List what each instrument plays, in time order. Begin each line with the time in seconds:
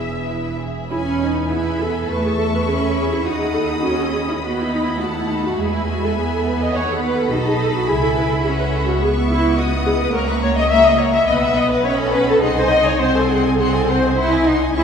Already playing: double bass section E1, cello section E2, french horn section E3 G#4, violin section G#4 E5, viola section E5
0.00 violin section E5
0.29 violin section E4 B4
0.59 violin section G#4 E5
0.90 double bass section E2, cello section C#4, viola section E4, violin section G#5 B5
1.06 viola section C#4
1.20 viola section D#4
1.50 cello section B3, viola section E4, violin section E5 G#5 B5
1.80 viola section A4
2.08 double bass section E2, cello section A3, viola section B4, violin section E5 A5 C#6
2.25 viola section G#4
2.37 viola section A4
2.54 viola section B4
2.66 cello section C#4, viola section G#4, violin section B5
2.81 viola section A4
2.96 viola section G#4
3.11 viola section E4
3.25 double bass section D#2, cello section D#4, viola section F#4, violin section F#5 B5 D#6
3.39 viola section G#4
3.54 viola section A4
3.69 viola section G#4
3.83 cello section C#4, viola section F#4, violin section D#5
3.98 viola section A4
4.13 viola section G#4
4.28 viola section E4
4.42 cello section B3, viola section F#4, violin section D#5 B5
4.58 viola section E4
4.70 viola section D#4
4.84 viola section E4
4.99 cello section A3, viola section F#4, violin section F#5 A5
5.14 viola section E4
5.28 viola section D#4
5.44 viola section F#4
5.57 double bass section E2, cello section G#3, viola section G#4, violin section E5 G#5
5.72 viola section E4
5.86 viola section F#4
6.02 viola section A4
6.16 cello section B3, viola section G#4
6.32 viola section A4
6.47 viola section B4
6.62 viola section D#5
6.73 double bass section D#2, viola section C#5, violin section F#5 B5
6.90 viola section A4
7.02 viola section B4
7.17 viola section A4
7.30 double bass section B1, cello section D#4, viola section F#4, violin section D#5 A5
7.46 viola section G#4
7.60 viola section A4
7.75 viola section F#4
7.87 double bass section C#2, cello section E4, viola section G#4, violin section E5 G#5
8.02 viola section A4
8.17 viola section B4
8.30 viola section A4
8.43 cello section C#4, viola section G#4, violin section E5 F#5
8.58 viola section B4
8.73 viola section A4
8.88 viola section F#4
9.00 cello section B3, viola section G#4, violin section E5 C#6
9.29 viola section E4
9.57 viola section F#4, violin section D#5 F#5 D#6
9.86 viola section G#4
10.00 viola section B4
10.13 double bass section C#2, cello section A#3, viola section A#4, violin section C#5 F#5 A#5
10.28 viola section B4, violin section E5 A#5 C#6
10.40 violin section C#5 F#5 A#5, viola section C#5
10.55 viola section D#5, violin section E5 A#5 C#6
10.69 violin section C#5 F#5 A#5, viola section E5
10.84 viola section D#5, violin section E5 A#5 C#6
10.97 viola section C#5, violin section C#5 F#5 A#5
11.11 viola section E5, violin section E5 C#6
11.15 violin section A#5
11.25 double bass section B1, cello section B3, violin section B4 F#5 B5, viola section D#5
11.40 violin section D#5 F#5 B5, viola section E5
11.55 violin section B4 F#5 B5, viola section D#5
11.69 viola section B4, violin section D#5 F#5 B5
11.85 cello section C#4, violin section B4 F#5 B5, viola section C#5
11.98 viola section A4, violin section D#5 F#5 B5
12.12 viola section B4, violin section B4 F#5 B5
12.28 viola section A4, violin section D#5 F#5 B5
12.41 double bass section C2, cello section D#4, viola section G#4, violin section C5 F#5 C6
12.56 viola section C5, violin section D#5 G#5
12.71 violin section C5 F#5 C6, viola section D#5
12.86 viola section C#5, violin section D#5 G#5
13.00 cello section C4, viola section C5, violin section C5 F#5 C6
13.16 viola section A4, violin section D#5 G#5
13.30 viola section G#4, violin section C5 F#5 C6
13.44 viola section A4, violin section D#5 G#5
13.58 cello section C4, viola section G#4, violin section C5 F#5 C6
13.74 viola section A4, violin section D#5 G#5
13.88 violin section C5 F#5 C6, viola section C5
14.02 violin section D#5 G#5
14.17 cello section E4, violin section C5 F#5 C6
14.31 violin section D#5 G#5
14.46 cello section D#4, violin section C5 F#5 C6
14.60 violin section D#5 G#5
14.74 double bass section C#2, cello section C#4, viola section E4, violin section G#4 E5 C#6